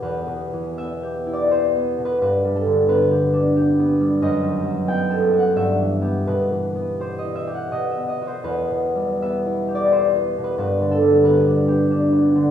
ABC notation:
X:1
M:3/4
L:1/16
Q:1/4=86
K:Em
V:1 name="Harp"
B4 e3 d c3 B | B2 A2 B8 | ^d4 g3 f e4 | B4 c ^d e f d e d c |
B4 e3 d c3 B | B2 A2 B8 |]
V:2 name="Harp"
(3[E,,B,EG]2 B,,2 E,2 (3B,2 G2 E2 (3G2 B,2 B,,2 | (3G,,2 G,2 D,2 (3B,2 G2 D2 (3G2 B,2 G,2 | (3F,,2 ^D,2 F,2 (3B,2 A2 F2 (3G,,2 E,2 [B,G]2 | (3B,,2 E,2 B,2 (3G2 E2 G2 (3B,,2 B,2 [B,F]2 |
(3E,,2 B,,2 G,2 (3B,2 E2 G2 (3E2 B,2 B,,2 | (3G,,2 D,2 G,2 (3B,2 D2 G2 (3D2 B,2 D,2 |]